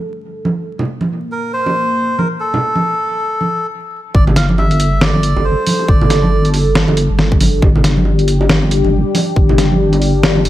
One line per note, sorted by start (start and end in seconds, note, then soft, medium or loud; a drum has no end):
0.00 3.67 G3 medium
0.00 3.67 D4 medium
0.00 0.66 A4 medium
0.45 high conga medium
0.67 3.71 A#3 medium
0.79 low conga medium
1.01 high conga medium
1.32 1.52 A#4 medium
1.53 2.21 C5 loud
1.66 high bongo medium
1.66 high conga medium
2.18 2.28 A#4 medium
2.18 high conga medium
2.40 3.67 A4 medium
2.54 low conga medium
2.75 high bongo soft
2.75 high conga medium
3.41 high conga medium
4.14 5.35 G1 loud
4.14 10.49 G3 medium
4.14 10.49 D4 medium
4.14 7.61 A4 loud
4.14 4.24 D5 loud
4.14 kick loud
4.27 high bongo medium
4.27 low conga medium
4.36 4.46 F5 loud
4.36 snare medium
4.36 closed hi-hat medium
4.49 high conga loud
4.58 5.03 E5 loud
4.58 high bongo medium
4.71 closed hi-hat soft
4.80 closed hi-hat medium
5.01 5.46 D5 loud
5.01 snare loud
5.01 high bongo medium
5.14 high conga medium
5.23 closed hi-hat medium
5.36 5.56 G1 loud
5.36 high bongo medium
5.45 5.90 C5 loud
5.67 open hi-hat loud
5.67 high conga loud
5.79 high bongo medium
5.88 7.08 G1 loud
5.88 6.50 D5 medium
5.88 kick loud
6.01 low conga loud
6.10 snare medium
6.10 closed hi-hat medium
6.10 high bongo medium
6.23 high conga medium
6.45 closed hi-hat soft
6.54 open hi-hat medium
6.54 high bongo medium
6.75 snare loud
6.88 high bongo medium
6.88 high conga medium
6.97 closed hi-hat medium
7.10 7.61 G1 medium
7.19 snare medium
7.32 kick loud
7.32 high bongo medium
7.41 open hi-hat loud
7.41 high conga medium
7.62 8.82 G1 loud
7.62 10.49 G4 medium
7.62 kick loud
7.62 high bongo medium
7.76 low conga medium
7.84 snare medium
7.84 closed hi-hat medium
7.97 high conga medium
8.05 high bongo medium
8.19 closed hi-hat soft
8.28 closed hi-hat medium
8.41 high bongo medium
8.49 snare loud
8.63 high conga medium
8.71 closed hi-hat medium
8.84 9.04 G1 loud
8.84 high bongo medium
9.15 open hi-hat medium
9.15 high bongo medium
9.15 high conga medium
9.36 10.45 G1 loud
9.36 kick loud
9.49 low conga medium
9.58 snare medium
9.58 closed hi-hat medium
9.58 high bongo soft
9.72 high conga medium
9.93 closed hi-hat soft
9.93 high bongo medium
10.02 open hi-hat medium
10.23 snare loud
10.35 high bongo medium
10.35 high conga medium
10.45 10.49 G1 medium
10.45 closed hi-hat medium